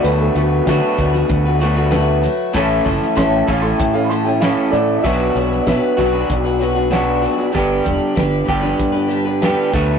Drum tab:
HH |x-x-x-x-x-x-x-x-|x-x-x-x-x-x-x-x-|x-x-x-x-x-x-x-x-|x-x-x-x-x-x-x-x-|
SD |----o--o----o-o-|---oo-------o-o-|---oo-------o---|----o--o----o---|
BD |----o-o-o-------|o-o-o-o-o-------|o---o-o-o-------|o-o-o-o-o-----o-|